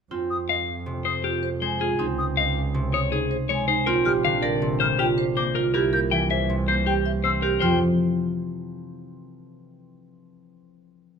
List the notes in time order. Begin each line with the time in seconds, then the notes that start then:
0.11 F2 C4 F4
0.30 D#6
0.49 D#5 F5
0.86 C3
1.05 C5 D#6
1.24 F4 G4
1.43 C5
1.62 G#3 C5
1.81 F4 G#4
1.99 C#2 C4 D#4
2.18 D#6
2.37 D#5 F5
2.74 C3
2.93 C#5 D#6
3.12 D#4 G#4
3.31 C5
3.49 G#3 C#5
3.68 D#4 C5
3.86 A#1 C4 F4 A#4
4.05 G3 G4 F6
4.25 D3 F5
4.42 A#4 D5
4.62 C3
4.80 G3 C5 F6
4.99 F4 G4 G5
5.18 C5
5.37 A#3 C5 D6
5.55 F4 A#4
5.74 C2 E4 G4 A#4
5.93 A#3 A#4 G6
6.11 E3 E5 G5
6.30 C5 E5
6.50 C3
6.68 A#3 C5 G6
6.86 G4 G5
7.06 E5
7.24 C4 C5 E6
7.42 G4 A#4
7.60 F2 F3 F4 C5 G5